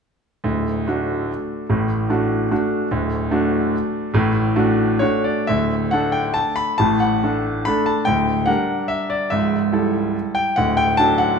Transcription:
0.44 D1 D2
0.87 A3 D4 F#4
1.69 A1 A2
2.10 A3 D4 F#4
2.51 A3 D4 F#4
2.91 D1 D2
3.31 A3 D4 F#4
4.14 A1 A2
4.56 A3 D4 F#4
4.99 A3 D4 F#4 C#5
5.24 D5
5.47 D1 D2 E5
5.91 A3 D4 A4 F#5
6.12 G5
6.34 A5
6.56 B5
6.78 A1 A2 A5
7.00 F#5
7.24 A3 D4 A4
7.65 A3 D4 A4 B5
7.86 A5
8.05 D1 D2 G5
8.46 G3 D4 A#4 F#5
8.88 E5
9.10 D5
9.30 C#1 C#2 E5
9.72 G3 E4 A4
10.35 G5
10.56 D1 D2 F#5
10.77 G5
10.97 F#3 D4 A4 A5
11.18 F#5

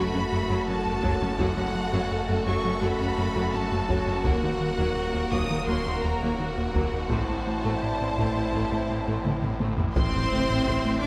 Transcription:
Already playing: F#1 F#3 A3 F#4 A4 B5
0.14 F#2 F#3 C#4
0.32 F#2 F#3 A3
0.49 F#2 F#3
0.68 F#2 F#3 C#4 A5
0.86 F#2 F#3 A3
1.03 F#2 F#3 C#5, taiko
1.21 F#2 F#3 C#4
1.39 F#1 F#2 F#3 A3 F#4 A4 F#5, taiko
1.57 F#2 F#3 C#4
1.75 F#3
1.93 F#2 F#3
2.11 F#2
2.28 F#2 F#3 A3
2.46 F#2 F#3 C#6, taiko
2.64 F#2 F#3 C#4
2.82 F#2 F#3 B5, taiko
2.99 F#2 F#3 C#4
3.17 F#2 F#3 A3
3.35 F#2 F#3
3.53 F#2 F#3 C#4 A5
3.71 F#2 F#3 A3
3.89 F#2 F#3 C#5, taiko
4.07 F#2 F#3 C#4
4.24 D#1 D#2 F#3 A#3 A#4 F#5, taiko
4.42 D#2 D#3 A#3 D#4
4.61 D#3
4.78 D#2 F#3 A#3
4.96 D#2
5.14 D#2 A#3
5.32 D#2 F#3 A#3 D#6, taiko
5.50 D#2 D#3 A#3 D#4
5.67 D#2 F#3 A#3 C6 F6, taiko
5.85 D#2 A#3 D#4
6.03 D#2 A#3 A#5
6.21 D#2 F#3 A#3
6.39 D#2 D#3 A#3 D#4 F#5
6.57 D#2 A#3
6.75 D#2 F#3 A#3, taiko
6.93 D#2 A#3 D#4
7.11 A1 A2 A3 C4 E4 C5 A5, taiko
7.29 A2 A3 E4
7.47 A3
7.64 A2 A3
7.82 A2 E4 D5
8.00 A2 A3 C4
8.18 A2 A3, taiko
8.36 A2 A3 E4
8.53 A2 A3, taiko
8.71 A2 A3 E4
8.89 A2 A3 C4
9.06 A2 A3
9.24 A2 A3 E4, taiko mid
9.42 A2 A3 C4, taiko mid
9.60 A2 A3, taiko high
9.78 A2 A3 E4, taiko low
9.95 A1 A2 C4 E4 C5 C6, taiko, impact
10.14 A1 A2
10.31 A1 A3 C5, taiko mid
10.49 A1 A2
10.66 A1 A2, taiko
10.85 A3
11.02 A1 A2 D4 D5 D6

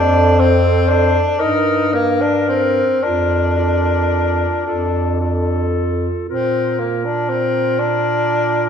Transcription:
Already playing: F2 D4 A4 C5
0.39 C4 A4 C5
0.89 D4
1.38 G2 D#4 A#4
1.93 A#3 A#4
2.21 D4
2.49 C4
3.02 F2 D4 F4 A#4
3.56 F4 A#4
4.66 F2 F4 A4
5.21 F4 A4
6.29 A#2 C4 F4 A#4
6.79 A#3
7.05 D4
7.29 C4
7.79 D4

